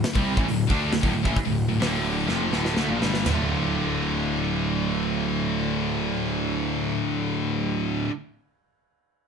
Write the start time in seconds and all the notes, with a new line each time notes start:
0.04 snare, open hi-hat
0.15 C2 C3 G3 C4, kick
0.37 A1 A2 E3, kick
0.48 D1 D2 A2, open hi-hat
0.70 D2 D3 A3 D4, kick
0.93 D1 D2 A2, snare, open hi-hat
1.03 D1 D2 A2, kick
1.14 D1 D2 A2
1.25 A1 A2 E3, kick
1.33 muted distorted electric guitar stroke, muted picked electric bass stroke, kick, open hi-hat
1.38 muted distorted electric guitar stroke
1.45 D1 D2 A2
1.50 D2 A2
1.68 D1 D2 A2
1.73 D2 A2
1.80 D1 D2 D3, snare, open hi-hat
1.84 D2 A2 D3
2.27 F1 F2 C3, snare
2.31 F2 C3 F3
2.50 D1 D2 A2, snare
2.54 D2 A2 D3
2.65 snare
2.75 D2 D3, snare
2.79 D3 A3
2.88 A#1 A#2 F3
2.92 F3
2.99 G1 G2 G3, snare
3.03 G2 D3 G3
3.14 snare
3.26 D1 D2 A2 D3, snare, floor tom, ride bell
3.31 A3 F4